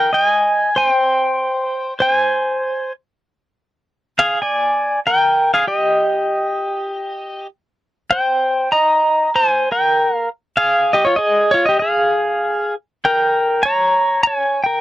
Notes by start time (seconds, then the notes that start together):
Already playing: G5
0.13 D#5 G#5
0.76 C5 G#5
0.89 G5
2.00 C5 G#5
4.19 G#4 F5
4.42 D5 G#5
5.07 A#4 G5
5.54 G#4 F5
5.67 G4 D#5
8.11 C5 G5
8.72 D#5 A#5
9.35 C5 G#5
9.72 A#4 G5
10.15 F5
10.57 G#4 F5
10.93 G4 D#5
11.05 F4 C#5
11.16 G#4 D#5
11.51 F4 C#5
11.65 G4 D#5
11.79 G#4 F5
13.05 A#4 G5
13.63 C#5 A#5
14.23 C#5 G#5
14.64 A#4 G5